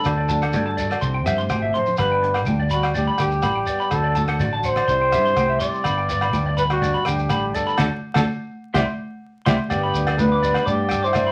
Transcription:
Already playing: A4
0.03 D2 D3 F#3 D4 F#4, kick, cross-stick, muted conga, low agogo, shekere
0.17 D5
0.29 F#4 A5, closed hi-hat, muted conga, high conga, low conga, shekere
0.42 F#5, cross-stick, low agogo, shekere
0.53 G2 F#4 D5, kick, high conga, shekere
0.66 A5
0.77 F#3 D5, closed hi-hat, shekere
0.90 D5, cross-stick, low agogo, shekere
1.01 C2 C3 C4 C6, kick, muted conga, shekere
1.14 G5
1.26 G2 G4 E5, cross-stick, closed hi-hat, low conga, low agogo, shekere
1.38 C6, high conga, shekere
1.49 G#1 B2 G5, kick, cross-stick, high conga, low agogo, shekere
1.62 E5, high conga
1.74 A2 C5 C6, closed hi-hat, low conga
1.86 low conga, shekere
1.97 G1 G2 G3 B3 D4 B4 B5, kick, cross-stick, muted conga, low agogo, shekere
2.12 G5
2.23 D4, muted clean electric guitar stroke, closed hi-hat, muted conga
2.34 muted clean electric guitar stroke, cross-stick, low agogo
2.46 D2 D4 G5, kick, high conga, shekere
2.60 D5
2.70 G3 F#4 B5, closed hi-hat, shekere
2.83 G5, cross-stick, low agogo, shekere
2.95 D4 G4 D5, kick, muted conga, high conga, shekere
3.07 B5
3.18 D2 D4 G4 G5, cross-stick, closed hi-hat, low agogo, shekere
3.31 shekere
3.42 A1 B5, muted nylon-string guitar stroke, kick, cross-stick, muted conga, high conga, low agogo, shekere
3.55 G5
3.67 B3 D5, closed hi-hat, shekere
3.80 B5, shekere
3.91 D2 D3 F#3 D4 F#4 A4, kick, cross-stick, muted conga, low agogo, shekere
4.04 D5
4.15 F#4 A5, closed hi-hat, muted conga, high conga, shekere
4.28 F#5, cross-stick, low agogo
4.40 A1 F#4 D5, kick, high conga, shekere
4.53 A5
4.63 F#3 C5 F#5, closed hi-hat, shekere
4.76 D5, cross-stick, low agogo, shekere
4.87 C2 C3 G3 C4 E4 C6, muted nylon-string guitar stroke, kick, muted conga, shekere
5.01 G5
5.12 G2 G4 E5, cross-stick, closed hi-hat, low conga, low agogo, shekere
5.25 C6, shekere
5.36 C2 E4 G5, kick, cross-stick, muted conga, high conga, low agogo, shekere
5.49 E5
5.60 G3 D5 C6, closed hi-hat, shekere
5.74 shekere
5.84 G1 G2 B3 B5, kick, cross-stick, muted conga, low agogo, shekere
5.98 G5
6.09 B4 D5, closed hi-hat, muted conga, shekere
6.21 B5, cross-stick, low agogo
6.33 D2 D4 G5, kick, high conga, shekere
6.46 D5
6.57 G3 B4 B5, closed hi-hat, shekere
6.70 F#4 G5, cross-stick, low agogo, shekere
6.82 D4 D5, kick, muted conga, high conga, shekere
6.94 B5
7.05 D2 D4 G4 G5, cross-stick, closed hi-hat, low agogo, shekere
7.19 shekere
7.29 A1 D3 D4 B5, kick, cross-stick, muted conga, high conga, low agogo, shekere
7.54 B3 A4 D5, closed hi-hat, shekere
7.67 B5, shekere
7.77 D2 F#3 A3 D4 A4 D5 F#5 A5, kick, snare, high conga, low agogo, shekere
8.14 D2 F#3 A3 D4 A4 D5 F#5 A5, kick, snare, high conga, low agogo, shekere
8.74 C2 G3 C4 E4 G4 E5 G5 C6, kick, snare, high conga, low agogo, shekere
9.46 C2 G3 C4 E4 G4 E5 G5 C6, kick, snare, high conga, low agogo, shekere
9.70 G1 G2 B3 G4 D5, kick, cross-stick, muted conga, low agogo, shekere
9.83 B5
9.94 D2 D4, closed hi-hat, muted conga, shekere
10.07 D5, cross-stick, low agogo
10.18 B3 D4 B4, kick, high conga, shekere
10.32 D6
10.43 G4 D5, closed hi-hat, shekere
10.54 B5, cross-stick, low agogo, shekere
10.66 G2 D4 G4 D5 D6, kick, muted conga, high conga, shekere
10.89 G5, cross-stick, closed hi-hat, low agogo, shekere
11.03 E4 C5 D6, shekere
11.13 D4 D5, kick, cross-stick, high conga, low agogo, shekere
11.27 B5

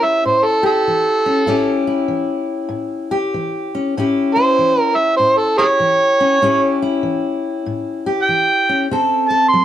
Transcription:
Already playing: E3 C#4 E4 G4
0.04 E5
0.25 A2 C5
0.45 A4
0.63 G4 A4
0.88 E3
1.26 C#4
1.46 A2 C#4 E4 G4
1.87 E4
2.08 E3
2.69 A2
3.11 G4
3.34 E3
3.75 C#4
3.97 A2 C#4 E4 G4
4.35 E4 C5
4.59 E3
4.81 A#4
4.96 E5
5.17 A2 C5
5.37 A4
5.58 G4 G#4 A#4 C#5
5.80 E3
6.20 C#4
6.42 A2 C#4 E4 G4
6.82 E4
7.03 E3
7.66 A2
8.06 G4
8.22 G5
8.29 E3
8.69 C#4
8.91 D3 C4 A4
9.28 A4 A5
9.48 C6
9.53 F#3

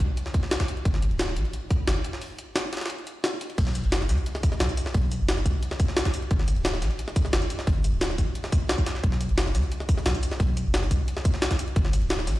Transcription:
0.00 D2, kick, closed hi-hat
0.17 closed hi-hat
0.26 snare
0.34 kick, closed hi-hat
0.43 snare
0.51 snare, closed hi-hat
0.60 kick, snare, closed hi-hat
0.68 closed hi-hat
0.77 closed hi-hat
0.85 G1, kick, closed hi-hat
0.94 snare
1.02 closed hi-hat
1.11 D1, closed hi-hat
1.19 snare, closed hi-hat
1.28 snare
1.36 A#1, closed hi-hat
1.45 closed hi-hat
1.53 closed hi-hat
1.70 kick, closed hi-hat
1.87 G1, snare, closed hi-hat
1.96 closed hi-hat
2.04 closed hi-hat
2.13 snare
2.21 closed hi-hat, open hi-hat
2.38 closed hi-hat
2.56 snare, closed hi-hat
2.73 snare, closed hi-hat
2.77 snare, closed hi-hat
2.81 snare, closed hi-hat
2.86 snare, closed hi-hat
2.90 closed hi-hat
2.98 closed hi-hat
3.07 closed hi-hat
3.24 snare, closed hi-hat
3.41 closed hi-hat
3.50 closed hi-hat
3.58 B1, kick, closed hi-hat, crash
3.67 snare
3.75 closed hi-hat, tambourine
3.84 F#1, closed hi-hat
3.92 snare, closed hi-hat
4.01 snare
4.09 D2, snare, closed hi-hat, tambourine
4.18 closed hi-hat
4.26 closed hi-hat
4.35 snare
4.43 kick, closed hi-hat, tambourine
4.52 snare
4.60 B1, snare, closed hi-hat
4.69 closed hi-hat, tambourine
4.77 closed hi-hat, tambourine
4.86 snare
4.94 B1, kick, closed hi-hat, open hi-hat
5.11 closed hi-hat, tambourine
5.20 F#1
5.29 snare, closed hi-hat
5.37 snare
5.46 D2, kick, closed hi-hat, tambourine
5.63 closed hi-hat
5.71 snare
5.80 kick, closed hi-hat, tambourine
5.88 snare
5.97 snare, closed hi-hat
6.05 kick, snare, closed hi-hat, tambourine
6.14 closed hi-hat, tambourine
6.22 closed hi-hat
6.31 G1, kick, closed hi-hat
6.39 snare
6.48 closed hi-hat, tambourine
6.56 D1, closed hi-hat
6.65 snare, closed hi-hat
6.74 snare
6.82 A#1, snare, closed hi-hat, tambourine
6.91 closed hi-hat
6.99 closed hi-hat
7.08 snare
7.16 kick, closed hi-hat, tambourine
7.25 snare
7.33 G1, snare, closed hi-hat
7.42 closed hi-hat, tambourine
7.50 closed hi-hat, tambourine
7.59 snare
7.67 G1, kick, closed hi-hat, open hi-hat
7.84 closed hi-hat, tambourine
7.93 D1
8.01 snare, closed hi-hat, tambourine
8.10 snare
8.18 A#1, kick, closed hi-hat, tambourine
8.35 closed hi-hat
8.44 snare
8.52 kick, closed hi-hat, tambourine
8.69 snare, closed hi-hat
8.78 kick, tambourine
8.86 snare, closed hi-hat, tambourine
8.95 snare
9.04 B1, kick, closed hi-hat
9.12 snare
9.21 closed hi-hat, tambourine
9.29 F#1, closed hi-hat
9.38 snare, closed hi-hat
9.46 snare
9.55 D2, snare, closed hi-hat, tambourine
9.63 closed hi-hat
9.72 closed hi-hat
9.80 snare
9.89 kick, closed hi-hat, tambourine
9.97 snare
10.06 B1, snare, closed hi-hat
10.14 closed hi-hat, tambourine
10.23 closed hi-hat, tambourine
10.31 snare
10.40 B1, kick, closed hi-hat, open hi-hat
10.57 closed hi-hat, tambourine
10.66 F#1
10.74 snare, closed hi-hat
10.83 snare
10.91 D2, kick, closed hi-hat, tambourine
11.08 closed hi-hat
11.17 snare
11.25 kick, closed hi-hat, tambourine
11.34 snare
11.42 snare, closed hi-hat
11.51 kick, snare, closed hi-hat, tambourine
11.59 closed hi-hat, tambourine
11.68 closed hi-hat
11.76 G1, kick, closed hi-hat
11.85 snare
11.93 closed hi-hat, tambourine
12.02 D1, closed hi-hat
12.10 snare, closed hi-hat
12.19 snare
12.27 A#1, snare, closed hi-hat, tambourine
12.36 closed hi-hat

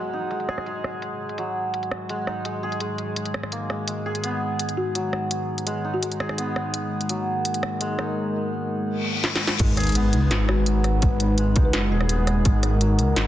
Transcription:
Already playing: F#3 G#3 B3 D#4 G#4 B4, downlifter
0.13 D#4
0.31 G#3, closed hi-hat
0.40 closed hi-hat
0.49 G#4, cross-stick
0.58 cross-stick
0.66 G#3, closed hi-hat
0.84 cross-stick
1.02 F#4, closed hi-hat
1.29 closed hi-hat
1.38 F#3, closed hi-hat
1.74 closed hi-hat
1.83 closed hi-hat
1.91 cross-stick
2.09 G#3, closed hi-hat
2.27 D#4, cross-stick
2.45 G#3, closed hi-hat
2.63 G#4
2.72 closed hi-hat
2.80 G#3, closed hi-hat
2.98 closed hi-hat
3.16 closed hi-hat
3.26 closed hi-hat
3.34 cross-stick
3.43 cross-stick
3.52 A#3, closed hi-hat
3.70 G#3, cross-stick
3.88 G#3 B4, closed hi-hat
4.06 G#4
4.15 closed hi-hat
4.24 B3, closed hi-hat
4.59 closed hi-hat
4.69 closed hi-hat
4.77 F#4
4.95 F#3, closed hi-hat
5.13 cross-stick
5.31 closed hi-hat
5.58 closed hi-hat
5.67 G#3, closed hi-hat
5.84 D#4
5.94 F#4
6.03 G#3, closed hi-hat
6.12 closed hi-hat
6.20 G#4, cross-stick
6.29 cross-stick
6.38 B3, closed hi-hat
6.56 cross-stick
6.74 A#4, closed hi-hat
7.01 closed hi-hat
7.09 F#3, closed hi-hat
7.45 closed hi-hat
7.54 closed hi-hat
7.63 cross-stick
7.81 G#3, closed hi-hat
7.99 D#4, cross-stick
8.88 reverse cymbal
9.24 snare
9.36 snare
9.47 snare
9.59 G#1 G#3 D#4 B4, kick, closed hi-hat, crash, sub drop
9.77 G#4, cross-stick, closed hi-hat
9.80 closed hi-hat
9.84 closed hi-hat
9.87 closed hi-hat
9.89 closed hi-hat
9.92 closed hi-hat
9.95 B3, closed hi-hat
10.13 C#2, closed hi-hat
10.31 G#1, snare, closed hi-hat
10.49 F#4, cross-stick
10.66 F#3, closed hi-hat
10.84 cross-stick, closed hi-hat
11.02 kick, closed hi-hat
11.20 closed hi-hat
11.38 G#3, closed hi-hat
11.56 C#2 D#4, kick, closed hi-hat
11.65 B4
11.73 F#1 G#3, snare, closed hi-hat
11.92 D#1 G#4
12.01 cross-stick
12.09 B3, closed hi-hat
12.27 cross-stick, closed hi-hat
12.45 G#1 A#4, kick, closed hi-hat
12.63 cross-stick, closed hi-hat
12.81 F#3, closed hi-hat
12.99 C#2, closed hi-hat
13.16 G#1, snare, closed hi-hat

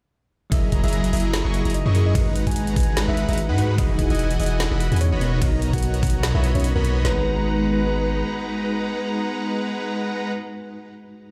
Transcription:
0.50 F#1 F#3 A#3 E4 F#4 G#4 A#4 D#5 E5 A#5, kick, closed hi-hat, ride
0.54 D#5
0.72 kick, closed hi-hat
0.83 F#1 F#3 E4 G#4 D#5 E5 A#5, closed hi-hat
0.88 closed hi-hat
0.93 closed hi-hat
1.04 closed hi-hat
1.13 F#1 F#3 E4 G#4 D#5 E5 A#5, closed hi-hat, open hi-hat
1.20 closed hi-hat
1.34 snare, closed hi-hat
1.45 F#1 F#3 E4 G#4 D#5 C#6
1.54 closed hi-hat
1.65 F#1 F#3 E4 G#4 D#5 A#5, closed hi-hat
1.70 closed hi-hat
1.74 D#5, closed hi-hat
1.86 F#2 F#3 E4 G#4 D#5 C#6
1.94 F#3 E4 G#4 A#4 D#5, closed hi-hat
2.06 D#5
2.13 G#1 G#3 D#4 F#4 B4 F#5 A#5, kick, closed hi-hat, ride
2.17 B4
2.36 closed hi-hat
2.47 G#1 G#3 D#4 B4 F#5 G#5 A#5, kick, closed hi-hat
2.51 closed hi-hat
2.56 closed hi-hat
2.67 closed hi-hat
2.76 G#1 G#3 D#4 B4 F#5 G#5 A#5, kick, closed hi-hat, open hi-hat
2.83 closed hi-hat
2.97 snare, closed hi-hat
3.08 G#1 G#3 D#4 B4 E5 F#5 B5
3.17 closed hi-hat
3.29 G#1 G#3 D#4 B4 E5 F#5 A#5, closed hi-hat
3.33 closed hi-hat
3.38 closed hi-hat
3.49 G#2 G#3 D#4 B4 F#5 B5
3.57 G#3 D#4 F#4 B4, closed hi-hat
3.76 E1 E3 D#4 E4 F#4 G#4 D#5 F#5 G#5, kick, closed hi-hat, ride
3.99 kick, closed hi-hat
4.10 E1 E3 E4 D#5 F#5 G#5, closed hi-hat
4.15 closed hi-hat
4.19 closed hi-hat
4.31 closed hi-hat
4.40 E1 E3 E4 D#5 F#5 G#5, closed hi-hat, open hi-hat
4.46 closed hi-hat
4.60 snare, closed hi-hat
4.71 E1 E3 E4 D#5 F#5 B5
4.80 closed hi-hat
4.92 E2 E3 E4 D#5 F#5 G#5, closed hi-hat
4.96 closed hi-hat
5.01 C#5, closed hi-hat
5.12 E1 B3 F#4 C#5 D#5 B5
5.20 B2 B3 D#4 A#4, closed hi-hat
5.33 D#5
5.40 B1 B2 B3 D#4 F#4 C#5 D#5 A#5, kick, closed hi-hat, ride
5.44 A#4
5.62 closed hi-hat
5.73 B1 B3 F#4 C#5 D#5 F#5 A#5, kick, closed hi-hat
5.78 closed hi-hat
5.83 closed hi-hat
5.94 closed hi-hat
6.03 B1 B3 F#4 C#5 D#5 F#5 A#5, kick, closed hi-hat, open hi-hat
6.10 closed hi-hat
6.23 snare, closed hi-hat
6.35 B1 B3 F#4 C#5 D#5 E5 B5
6.44 closed hi-hat
6.55 B1 B3 F#4 C#5 D#5 B5, closed hi-hat
6.60 closed hi-hat
6.64 closed hi-hat
6.75 B1 B3 F#4 A#4 C#5 D#5 B5
6.85 closed hi-hat
7.02 G#1 G#3 D#4 F#4 B4 F#5 A#5, snare
7.08 B4

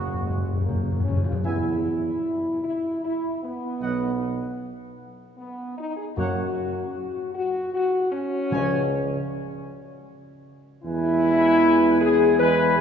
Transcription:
Already playing: F#1 F#2 A#3 F#4
0.07 F#2
0.14 F#2
0.20 F#2 G#3
0.30 F#2
0.37 F#2
0.45 F#2
0.53 F#2
0.61 F#2 F#3 A#3
0.69 F#2
0.76 F#2
0.84 F#2
0.92 F#2
1.00 F#2 F3 C#4
1.08 F#2
1.16 F#2
1.24 F#2 F4
1.32 F#2
1.44 E2 E3 B3 E4 E5 G#5
2.63 E4
3.04 E4
3.43 B3
3.81 B1 F#3 B3 D#5 F#5
5.38 B3
5.78 D#4
5.96 G#4
6.17 F#2 F#3 A#3 F#4 C#5 F#5
7.34 F#4
7.74 F#4
8.12 C#4
8.51 C#2 C#3 F3 G#3 C#5 G#5
10.83 E2 E3 G#3 E4 B4 G#5
12.01 G#4
12.39 E3 G#3 B4 G#5
12.77 A#2

